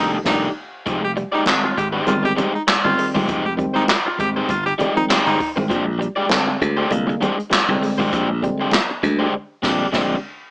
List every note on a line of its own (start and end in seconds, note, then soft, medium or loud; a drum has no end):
0.00 0.17 F1 loud
0.00 0.16 D#3 loud
0.00 0.16 G3 loud
0.00 0.16 A3 loud
0.00 0.17 D4 loud
0.00 0.12 D#4 loud
0.00 0.16 D#4 loud
0.00 0.16 G4 loud
0.00 0.16 A4 loud
0.00 0.16 D#5 medium
0.24 0.47 F1 loud
0.24 0.46 D#3 loud
0.24 0.46 G3 loud
0.24 0.47 A3 loud
0.24 0.47 D4 loud
0.24 0.47 D#4 loud
0.24 0.42 D#4 loud
0.24 0.47 G4 loud
0.24 0.47 A4 loud
0.24 0.48 D5 loud
0.24 kick loud
0.24 snare loud
0.24 crash loud
0.86 1.23 F1 medium
0.86 0.97 F3 medium
0.86 1.03 G#3 medium
0.86 1.03 D#4 medium
0.86 1.03 G4 medium
0.86 1.02 C5 medium
0.86 kick loud
0.86 closed hi-hat loud
0.86 muted conga soft
1.03 1.12 G4 medium
1.03 muted overdriven electric guitar stroke soft
1.16 1.27 G3 medium
1.16 muted overdriven electric guitar stroke soft
1.16 closed hi-hat medium
1.32 1.44 G#3 medium
1.32 1.44 D#4 medium
1.32 1.42 D#4 medium
1.32 1.43 G4 medium
1.32 1.43 D5 medium
1.32 muted clean electric guitar stroke soft
1.46 1.72 D#3 medium
1.46 1.72 G3 loud
1.46 1.73 G#3 loud
1.46 1.73 C4 loud
1.46 muted overdriven electric guitar stroke medium
1.46 snare loud
1.46 clap medium
1.46 closed hi-hat medium
1.46 high conga medium
1.63 1.74 F4 medium
1.63 muted overdriven electric guitar stroke soft
1.77 2.01 G#1 medium
1.77 1.87 G#3 medium
1.77 1.88 G4 medium
1.77 kick medium
1.77 closed hi-hat medium
1.92 2.13 G#3 medium
1.92 2.12 D#4 medium
1.92 2.12 G4 medium
1.92 2.12 C5 loud
2.06 2.31 G1 medium
2.06 2.38 D#3 loud
2.06 2.39 G3 loud
2.06 2.39 G#3 medium
2.06 2.39 C4 loud
2.06 2.21 F4 loud
2.06 muted clean electric guitar stroke soft
2.06 closed hi-hat medium
2.06 muted conga medium
2.23 2.33 G#3 medium
2.23 2.33 G4 loud
2.23 muted overdriven electric guitar stroke soft
2.23 closed hi-hat soft
2.36 2.48 G3 medium
2.36 2.53 G#3 medium
2.36 2.54 D#4 medium
2.36 2.53 G4 medium
2.36 2.53 C5 medium
2.36 closed hi-hat medium
2.36 muted conga medium
2.36 low conga medium
2.54 2.63 D#4 medium
2.54 muted overdriven electric guitar stroke soft
2.67 muted overdriven electric guitar stroke soft
2.67 muted slap bass stroke medium
2.67 muted clean electric guitar stroke soft
2.67 snare loud
2.67 clap loud
2.67 closed hi-hat loud
2.67 high conga medium
2.84 2.95 G1 medium
2.84 3.16 D#3 loud
2.84 3.16 G3 loud
2.84 3.16 G#3 medium
2.84 3.16 C4 loud
2.84 3.08 F4 loud
2.84 muted overdriven electric guitar stroke medium
2.98 3.09 G#3 medium
2.98 open hi-hat medium
3.14 3.25 G1 loud
3.14 3.24 F3 medium
3.14 3.26 G#3 medium
3.14 3.27 D#4 medium
3.14 3.28 G4 medium
3.14 3.28 C5 medium
3.14 high conga medium
3.27 3.65 F1 loud
3.27 3.39 F3 medium
3.27 3.44 G#3 medium
3.27 3.45 D#4 medium
3.27 3.45 G4 loud
3.27 3.44 C5 loud
3.27 kick loud
3.27 closed hi-hat loud
3.27 muted conga soft
3.45 3.53 G4 medium
3.45 muted overdriven electric guitar stroke soft
3.57 3.83 D#3 loud
3.57 3.84 G3 medium
3.57 3.69 G3 medium
3.57 3.84 G#3 medium
3.57 3.84 C4 loud
3.57 muted overdriven electric guitar stroke soft
3.57 kick medium
3.57 closed hi-hat medium
3.74 3.86 G#3 medium
3.74 3.83 D#4 loud
3.74 3.86 D#4 medium
3.74 3.85 G4 medium
3.74 3.85 C5 medium
3.74 muted clean electric guitar stroke soft
3.88 muted overdriven electric guitar stroke soft
3.88 snare loud
3.88 clap medium
3.88 closed hi-hat medium
3.88 high conga medium
4.05 4.16 F4 medium
4.05 muted overdriven electric guitar stroke medium
4.18 4.42 G#1 medium
4.18 4.50 D#3 medium
4.18 4.50 G3 medium
4.18 4.50 G#3 medium
4.18 4.30 G#3 medium
4.18 4.51 C4 loud
4.18 4.30 G4 loud
4.18 kick medium
4.18 closed hi-hat medium
4.36 4.50 G#3 medium
4.36 4.50 D#4 medium
4.36 4.49 G4 medium
4.36 4.49 C5 loud
4.49 4.72 G1 medium
4.49 4.63 F4 loud
4.49 muted clean electric guitar stroke soft
4.49 kick loud
4.49 closed hi-hat loud
4.49 muted conga soft
4.66 4.74 G4 medium
4.66 muted overdriven electric guitar stroke medium
4.66 closed hi-hat medium
4.78 4.89 G3 medium
4.78 4.95 G#3 medium
4.78 4.95 D#4 medium
4.78 4.95 G4 medium
4.78 4.95 D5 loud
4.78 closed hi-hat medium
4.78 muted conga medium
4.78 low conga medium
4.95 5.21 D#3 loud
4.95 5.05 F3 medium
4.95 5.21 G3 loud
4.95 5.21 G#3 medium
4.95 5.21 C4 loud
4.95 5.05 D#4 loud
4.95 muted overdriven electric guitar stroke soft
4.95 closed hi-hat soft
5.09 5.37 G#3 medium
5.09 5.38 D#4 loud
5.09 5.38 G4 loud
5.09 5.38 C5 loud
5.09 muted slap bass stroke medium
5.09 snare loud
5.09 clap loud
5.09 closed hi-hat loud
5.09 high conga medium
5.26 5.37 G1 medium
5.26 5.35 G#3 medium
5.26 5.50 D#4 loud
5.40 muted overdriven electric guitar stroke soft
5.40 muted clean electric guitar stroke soft
5.40 kick loud
5.40 open hi-hat medium
5.56 5.67 G#1 medium
5.56 5.70 D#3 loud
5.56 5.70 G3 medium
5.56 5.70 G#3 medium
5.56 5.65 C4 medium
5.56 5.71 C4 loud
5.56 muted overdriven electric guitar stroke medium
5.56 high conga medium
5.69 6.07 A#1 loud
5.69 5.80 F3 medium
5.69 5.86 G#3 medium
5.69 5.86 D4 medium
5.69 5.85 G4 medium
5.69 5.84 C5 medium
5.69 kick loud
5.69 closed hi-hat medium
5.69 muted conga soft
5.85 muted overdriven electric guitar stroke soft
5.98 6.11 G3 medium
5.98 muted overdriven electric guitar stroke soft
5.98 closed hi-hat medium
6.16 6.28 G#3 medium
6.16 6.28 D4 medium
6.16 6.27 G4 medium
6.16 6.27 D5 medium
6.16 muted clean electric guitar stroke soft
6.29 6.56 D3 loud
6.29 6.56 G3 medium
6.29 6.56 G#3 medium
6.29 6.57 C4 loud
6.29 muted overdriven electric guitar stroke soft
6.29 snare loud
6.29 clap loud
6.29 closed hi-hat loud
6.29 high conga medium
6.47 muted overdriven electric guitar stroke soft
6.61 6.85 D2 loud
6.61 6.72 G#3 medium
6.61 kick medium
6.61 closed hi-hat medium
6.77 6.91 G#3 medium
6.77 6.91 D4 medium
6.77 6.90 G4 loud
6.77 6.90 C5 loud
6.90 7.14 C2 medium
6.90 7.22 D3 loud
6.90 7.23 G3 loud
6.90 7.23 G#3 loud
6.90 7.23 A#3 loud
6.90 muted clean electric guitar stroke soft
6.90 closed hi-hat medium
6.90 muted conga medium
7.07 7.17 G#3 medium
7.07 muted overdriven electric guitar stroke medium
7.07 closed hi-hat medium
7.21 7.32 G3 medium
7.21 7.38 G#3 medium
7.21 7.38 D4 medium
7.21 7.37 G4 medium
7.21 7.36 C5 medium
7.21 closed hi-hat medium
7.21 muted conga medium
7.21 low conga medium
7.37 muted overdriven electric guitar stroke soft
7.37 closed hi-hat medium
7.50 muted overdriven electric guitar stroke soft
7.50 muted slap bass stroke soft
7.50 muted clean electric guitar stroke soft
7.50 snare loud
7.50 clap loud
7.50 closed hi-hat loud
7.50 high conga medium
7.68 7.79 C2 medium
7.68 8.00 D3 loud
7.68 8.00 G3 loud
7.68 8.00 G#3 loud
7.68 8.01 C4 loud
7.68 muted overdriven electric guitar stroke soft
7.83 7.92 G#3 medium
7.83 open hi-hat medium
7.98 8.09 G#1 medium
7.98 8.08 F3 medium
7.98 8.12 G#3 medium
7.98 8.12 D4 medium
7.98 8.12 G4 medium
7.98 8.11 C5 medium
7.98 high conga medium
8.13 8.49 A#1 loud
8.13 8.23 F3 medium
8.13 8.29 G#3 medium
8.13 8.29 D4 medium
8.13 8.29 G4 medium
8.13 8.28 C5 medium
8.13 kick loud
8.13 closed hi-hat medium
8.13 muted conga soft
8.29 muted overdriven electric guitar stroke soft
8.41 8.68 D3 loud
8.41 8.68 G3 loud
8.41 8.53 G3 medium
8.41 8.68 G#3 loud
8.41 8.68 C4 loud
8.41 muted overdriven electric guitar stroke soft
8.41 kick medium
8.41 closed hi-hat medium
8.60 8.71 G#3 medium
8.60 8.70 D4 medium
8.60 8.70 G4 medium
8.60 8.70 C5 medium
8.60 muted clean electric guitar stroke soft
8.71 muted overdriven electric guitar stroke soft
8.71 snare loud
8.71 clap medium
8.71 closed hi-hat loud
8.71 high conga medium
8.89 muted overdriven electric guitar stroke medium
9.03 9.26 D2 medium
9.03 9.33 D3 medium
9.03 9.33 G3 medium
9.03 9.13 G#3 medium
9.03 9.33 G#3 medium
9.03 9.34 D4 medium
9.03 kick medium
9.03 closed hi-hat medium
9.19 9.33 G#3 medium
9.19 9.33 D4 medium
9.19 9.33 G4 medium
9.19 9.32 C5 medium
9.62 9.85 A#1 loud
9.62 9.84 D3 loud
9.62 9.85 G3 loud
9.62 9.84 G#3 loud
9.62 9.85 G#3 loud
9.62 9.85 C4 loud
9.62 9.84 D4 loud
9.62 9.85 G4 loud
9.62 9.85 D5 loud
9.62 kick loud
9.62 snare loud
9.62 crash medium
9.92 10.15 A#1 loud
9.92 10.15 D3 loud
9.92 10.15 G3 loud
9.92 10.14 G#3 loud
9.92 10.15 G#3 loud
9.92 10.16 C4 loud
9.92 10.14 D4 loud
9.92 10.15 G4 loud
9.92 10.15 C5 loud
9.92 kick loud
9.92 snare loud
9.92 crash medium